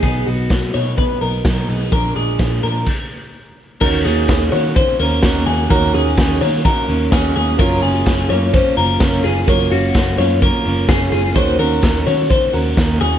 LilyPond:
<<
  \new Staff \with { instrumentName = "Clean electric guitar" } { \time 4/4 \key bes \phrygian \tempo 4 = 127 aes'8 fis'4 des''8 b'8 bes'4 aes'8 | bes'8 aes'4 bes'8 r2 | \key ees \minor bes'8 aes'4 des''8 c''8 bes'4 aes'8 | bes'8 aes'4 des''8 bes'4 aes'8 aes'8 |
bes'8 aes'4 des''8 c''8 bes'4 aes'8 | bes'8 ges'4 des''8 bes'4 aes'8 aes'8 | c''8 bes'4 des''8 c''8 bes'4 aes'8 | }
  \new Staff \with { instrumentName = "Reed electric piano" } { \time 4/4 \key bes \phrygian r1 | r1 | \key ees \minor <ees' ges' bes' des''>1 | <ees' ges' bes' des''>1 |
<f' ges' bes' des''>1 | <f' ges' bes' des''>1 | <ees' ges' bes' des''>1 | }
  \new Staff \with { instrumentName = "Steel-string acoustic guitar" } { \time 4/4 \key bes \phrygian <b, fis b dis'>8 <fis b dis'>8 <b, fis b dis'>8 <fis b dis'>8 <b, fis b dis'>8 <fis b dis'>8 <b, fis b dis'>8 <fis b dis'>8 | <bes, f aes d'>8 <f aes d'>8 <bes, f aes d'>8 <f aes d'>8 r2 | \key ees \minor <ees bes des' ges'>8 <bes des' ges'>8 <ees bes des' ges'>8 <bes des' ges'>8 <ees bes des' ges'>8 <bes des' ges'>8 <ees bes des' ges'>8 <bes des' ges'>8 | <ees bes des' ges'>8 <bes des' ges'>8 <ees bes des' ges'>8 <bes des' ges'>8 <ees bes des' ges'>8 <bes des' ges'>8 <ees bes des' ges'>8 <bes des' ges'>8 |
<ges bes des' f'>8 <bes des' f'>8 <ges bes des' f'>8 <bes des' f'>8 <ges bes des' f'>8 <bes des' f'>8 <ges bes des' f'>8 <bes des' f'>8 | <ges bes des' f'>8 <bes des' f'>8 <ges bes des' f'>8 <bes des' f'>8 <ges bes des' f'>8 <bes des' f'>8 <ges bes des' f'>8 <bes des' f'>8 | <ees bes des' ges'>8 <bes des' ges'>8 <ees bes des' ges'>8 <bes des' ges'>8 <ees bes des' ges'>8 <bes des' ges'>8 <ees bes des' ges'>8 <bes des' ges'>8 | }
  \new Staff \with { instrumentName = "Picked electric bass" } { \clef bass \time 4/4 \key bes \phrygian b,,8 b,,8 b,,8 b,8. r16 b,,8 b,,8 b,,8 | bes,,8 bes,,8 bes,,8 bes,8 r2 | \key ees \minor ees,8 ees,8 ees,8 ees8. r16 ees,8 ees,8 ees,8 | ees,8 ees,8 ees,8 ees8. r16 ees,8 ees,8 ees,8 |
ges,,8 ges,,8 ges,,8 ges,8. r16 ges,,8 ges,,8 ges,,8 | ges,,8 ges,,8 ges,,8 ges,8. r16 ges,,8 ges,,8 ges,,8 | ees,8 ees,8 ees,8 ees8. r16 ees,8 ees,8 ees,8 | }
  \new DrumStaff \with { instrumentName = "Drums" } \drummode { \time 4/4 <hh bd>8 hho8 <hh bd sn>8 hho8 <hh bd>8 hho8 <hh bd sn>8 hho8 | <hh bd>8 hho8 <hh bd sn>8 hho8 <cymc bd>4 r4 | <cymc bd>8 hho8 <hhp bd cymr sn>8 hho8 <hhp bd cymr>8 hho8 <hhp bd cymr sn>8 hho8 | <hhp bd cymr>8 hho8 <hhp bd cymr sn>8 hho8 <hhp bd cymr>8 hho8 <hhp bd cymr sn>8 hho8 |
<hhp bd cymr>8 hho8 <hhp bd cymr sn>8 hho8 <hhp bd cymr>8 hho8 <hhp bd cymr sn>8 hho8 | <hhp bd cymr>8 hho8 <hhp bd cymr sn>8 hho8 <hhp bd cymr>8 hho8 <hhp bd cymr sn>8 hho8 | <hhp bd cymr>8 hho8 <hhp bd cymr sn>8 hho8 <hhp bd cymr>8 hho8 <hhp bd cymr sn>8 hho8 | }
>>